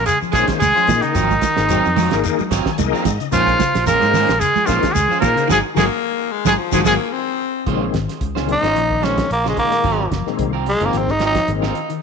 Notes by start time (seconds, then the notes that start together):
0.06 C#3 G#3 G#4, closed hi-hat, shekere
0.22 F3, muted fingered electric bass stroke, shekere
0.31 A#1 G#3 A#3 C#4 D#4 F4 G#4 C5, kick, snare, closed hi-hat, shekere
0.35 G#4 C5
0.48 D#3, kick, snare, closed hi-hat, shekere
0.59 C#2 G#3 G#4, snare, closed hi-hat, high conga, shekere
0.76 F3 C#4 F4 C5, shekere
0.87 A#2 A#3 D#4 G#4 D#5, kick, closed hi-hat, high conga, low conga, shekere
1.02 C#3 D#3 D#4, closed hi-hat, shekere
1.15 G#1 F3 F#3 C4 F4 A#4, kick, closed hi-hat, shekere
1.30 kick, high conga, shekere
1.41 D#3, kick, snare, closed hi-hat, high conga, shekere
1.57 G#1 A#3 D#4 G#4 C5, snare, shekere
1.69 F#3 C4 A#4, muted clean electric guitar stroke, closed hi-hat, shekere
1.85 F2, shekere
1.96 F3 F#3 C4 F4 A#4, snare, open hi-hat, high conga, low conga, shekere
2.11 G#1 A#3 D#4 G#4 A#4, snare, closed hi-hat, shekere
2.24 D#3, closed hi-hat, shekere
2.39 F#3, muted fingered electric bass stroke, high conga, shekere
2.51 G#1 F#3 C4 F4 A#4 G#5, kick, snare, closed hi-hat, shekere
2.65 D#3, muted fingered electric bass stroke, kick, snare, shekere
2.78 C2 A#3 D#4 G#4 A#4 D#5, closed hi-hat, high conga, shekere
2.93 F3 C4 F4 A#4, shekere
3.05 G#2, kick, closed hi-hat, high conga, low conga, shekere
3.20 C#3, closed hi-hat, shekere
3.31 A#1 F3 G#3 A#3 C#4 D#4 F4 G#4 C5, kick, closed hi-hat, shekere
3.47 kick, shekere
3.59 C#3, kick, snare, closed hi-hat, high conga, shekere
3.75 A#1, snare, closed hi-hat, shekere
3.86 F3 G#3 A#3 C#4 F4 A#4 C5, closed hi-hat, low conga, shekere
4.00 G#2 A#3 D#4 G#4 C5, high conga, shekere
4.14 D#3 G#3 C#4 F4 C5, snare, open hi-hat, high conga, low conga, shekere
4.29 A#1, snare, closed hi-hat, shekere
4.39 C#3 G#3 G#4, closed hi-hat, shekere
4.55 F3, muted fingered electric bass stroke, high conga, shekere
4.66 A#1 F3 G#3 A#3 C#4 D#4 F4 G#4 A#4 C5, kick, snare, closed hi-hat, shekere
4.82 D#3, kick, snare, closed hi-hat, shekere
4.93 C#2 G#3 G#4, snare, closed hi-hat, high conga, shekere
5.08 F3 C#4 F4 C5, muted fingered electric bass stroke, shekere
5.20 A#2 A#3 D#4 G#4 A#4 C5, kick, closed hi-hat, high conga, low conga, shekere
5.35 C#3, closed hi-hat, shekere
5.48 G#1 D#3 F#3 G#3 D#4 F#4 G#4 C5, kick, snare, low conga, shekere
5.52 G#4
5.74 G#1 D#3 F#3 G#3 A#3 D#4 F#4 G#4 C5, kick, snare, low conga, shekere
6.32 G#3
6.45 G#1 D#3 F#3 G#3 D#4 F#4 G#4 C5, kick, snare, low conga, shekere
6.58 F3
6.72 G#1 D#3 F#3 G#3 D#4 F#4 G#4 C5, kick, low conga, shekere
6.84 G#1 D#3 F#3 G#3 A#3 D#4 F#4 G#4 C5, kick, snare, low conga, shekere
7.12 C4
7.66 A#1 A#2 C#3 D#3 G#3 C4 C#4 F4 C5, kick, closed hi-hat
7.94 G#1 D#3, kick, snare, closed hi-hat
8.09 snare, closed hi-hat
8.21 C#2 C#3, kick, closed hi-hat
8.35 A#2 D#3 G#3 C4 C#4 F4 C5, snare
8.48 F#3, closed hi-hat
8.52 D#4
8.62 G#1 C#4 F4 C5, snare, closed hi-hat
8.75 A#1 F3, closed hi-hat
8.90 D#3, kick
9.02 A#2 D#3 G#3 C4 C#4 F4 C5, snare, closed hi-hat
9.17 F3, kick, snare, closed hi-hat
9.31 A#1 A#3, closed hi-hat
9.44 C#3 C#4 F4 C5, snare
9.49 G#3
9.57 A#2 D#3 G#3 A#3, kick, closed hi-hat
9.72 muted clean electric guitar stroke, snare, closed hi-hat
9.84 G#1 D#3 F#3 C4 F4 A#4, kick, closed hi-hat
10.11 F#1 F3, kick, snare, closed hi-hat
10.27 A#2 D#3 G#3 C4, muted fingered electric bass stroke, snare
10.38 C2 D#3, kick, closed hi-hat
10.53 C4 F4 A#4
10.66 F#3 G#3, open hi-hat
10.81 F#1 A#2 D#3 G#3 C4 F4 A#4, closed hi-hat
10.86 A#3
10.93 G#1 F3, snare, closed hi-hat
10.98 C4
11.07 D#3 D#4, kick, snare
11.20 F#3 C4 F4 A#4, snare, closed hi-hat
11.26 D#4
11.35 F3, kick, snare, closed hi-hat
11.48 G#1 A#2 D#3 G#3 C4, closed hi-hat
11.62 D#3 C4 F4 A#4, snare
11.75 closed hi-hat
11.89 D#3, closed hi-hat